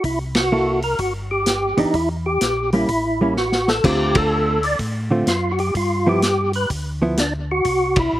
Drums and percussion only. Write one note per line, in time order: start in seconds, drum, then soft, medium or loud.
0.04 kick soft
0.04 open hi-hat soft
0.35 snare medium
0.35 ride medium
0.82 open hi-hat soft
0.98 kick soft
0.98 open hi-hat soft
1.46 snare medium
1.46 closed hi-hat soft
1.77 open hi-hat soft
1.94 kick soft
1.94 open hi-hat soft
2.41 snare medium
2.41 closed hi-hat soft
2.72 open hi-hat soft
2.88 kick soft
2.88 open hi-hat soft
3.37 snare soft
3.52 snare medium
3.68 snare medium
3.84 kick medium
3.84 crash medium
4.15 kick medium
4.15 ride medium
4.63 open hi-hat soft
4.79 kick soft
4.79 open hi-hat soft
5.27 snare medium
5.27 closed hi-hat soft
5.58 open hi-hat soft
5.75 kick soft
5.75 open hi-hat soft
6.22 snare medium
6.22 closed hi-hat soft
6.53 open hi-hat soft
6.70 kick soft
6.70 open hi-hat soft
7.17 snare medium
7.17 closed hi-hat soft
7.64 kick soft
7.64 open hi-hat soft
7.96 kick medium
7.96 ride medium